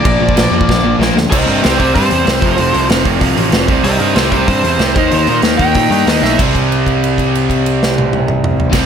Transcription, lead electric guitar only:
0.00 0.95 D5 medium
1.30 1.47 A#4 medium
1.30 1.47 D#5 loud
1.48 1.62 A#4 medium
1.48 1.63 D#5 medium
1.63 1.77 G4 medium
1.63 1.78 C5 medium
1.78 1.93 G4 medium
1.78 1.94 C5 medium
1.95 2.87 C5 medium
3.84 3.98 A#4 medium
3.84 3.98 D#5 loud
3.99 4.14 A#4 medium
3.99 4.15 D#5 loud
4.14 4.30 G4 medium
4.14 4.31 C5 medium
4.31 4.46 G4 medium
4.31 4.46 C5 medium
4.47 5.40 C5 loud
5.58 6.04 G5 loud
6.08 6.22 D#5 medium
6.23 6.38 E5 medium

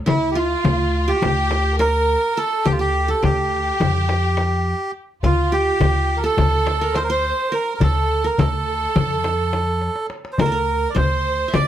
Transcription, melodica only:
0.08 0.30 E4 medium
0.31 0.37 G4 medium
0.38 1.11 F4 medium
1.08 1.76 G4 medium
1.80 2.39 A#4 loud
2.37 2.67 A4 loud
2.66 2.73 G4 loud
2.72 2.79 F4 medium
2.80 3.10 G4 loud
3.10 3.23 A4 medium
3.24 4.91 G4 medium
5.25 5.54 F4 medium
5.53 6.19 G4 loud
6.17 6.24 A#4 medium
6.25 6.98 A4 loud
6.96 7.03 C5 loud
7.04 7.10 A#4 medium
7.11 7.55 C5 loud
7.54 7.74 A#4 medium
7.76 7.82 A#4 medium
7.83 8.27 A4 loud
8.25 8.40 A#4 medium
8.39 10.06 A4 medium
10.33 10.39 C5 medium
10.40 10.91 A#4 loud
10.90 10.96 D5 medium
10.97 11.56 C5 medium
11.55 11.68 D5 loud

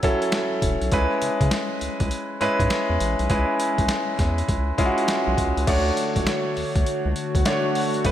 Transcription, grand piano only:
0.00 0.03 F#3 medium
0.00 0.64 F#3 medium
0.00 0.03 C#4 medium
0.00 0.64 C#4 medium
0.00 0.04 E4 medium
0.00 0.64 E4 medium
0.00 0.04 A4 medium
0.04 0.64 A4 loud
0.92 1.75 G#3 medium
0.92 1.75 C#4 medium
0.92 1.76 E4 medium
0.92 1.76 B4 medium
2.41 3.01 G#3 medium
2.41 3.02 C#4 medium
2.41 3.02 E4 medium
2.41 3.02 B4 medium
3.30 4.13 G#3 medium
3.30 4.13 C#4 medium
3.30 4.13 E4 medium
3.30 4.13 B4 medium
4.78 5.39 G#3 medium
4.78 5.39 C#4 medium
4.78 5.39 E4 medium
4.78 4.87 F4 medium
4.86 5.43 F#4 medium
5.67 6.50 A3 medium
5.67 6.51 D4 medium
5.67 6.51 F#4 medium
5.67 6.51 C#5 medium
7.46 7.89 A3 medium
7.46 7.89 D4 medium
7.46 7.89 F#4 medium
7.46 7.89 C#5 medium
8.05 8.12 A3 medium
8.05 8.12 C#4 medium
8.05 8.12 F#4 medium
8.05 8.12 B4 medium

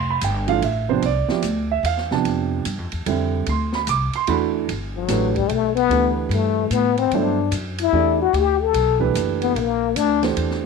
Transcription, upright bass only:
0.00 0.20 F1 medium
0.22 0.61 G1 medium
0.62 1.01 A1 loud
1.03 1.27 C2 medium
1.42 1.82 D2 loud
1.83 2.23 E2 medium
2.24 2.64 F2 medium
2.65 2.78 G2 medium
2.78 2.92 F2 medium
2.93 3.05 E2 medium
3.06 3.45 F2 medium
3.47 3.86 D2 loud
3.87 4.12 C2 loud
4.14 muted upright bass stroke soft
4.28 4.67 E2 medium
4.68 5.08 G1 medium
5.08 5.48 A1 medium
5.49 5.89 B1 medium
5.89 6.29 D2 medium
6.29 6.69 G2 medium
6.70 7.10 A2 medium
7.11 7.51 G2 medium
7.51 7.91 F#2 loud
7.92 8.32 E2 medium
8.33 8.73 D2 loud
8.73 9.13 B1 loud
9.14 9.54 F#1 medium
9.55 9.95 A#1 medium
9.96 10.36 D2 medium
10.37 10.66 E2 medium

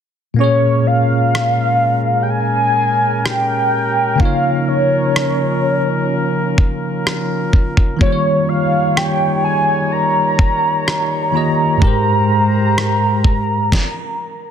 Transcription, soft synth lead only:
0.40 0.88 C#5 loud
0.87 2.24 F5 loud
2.23 2.31 G5 medium
2.30 3.27 G#5 loud
3.25 4.22 G5 loud
4.20 4.70 F5 loud
4.68 6.58 C#5 medium
8.01 8.50 C#5 loud
8.49 8.98 F5 loud
8.97 9.44 G5 medium
9.44 9.94 G#5 loud
9.92 11.34 A#5 loud
11.35 14.51 A#5 loud

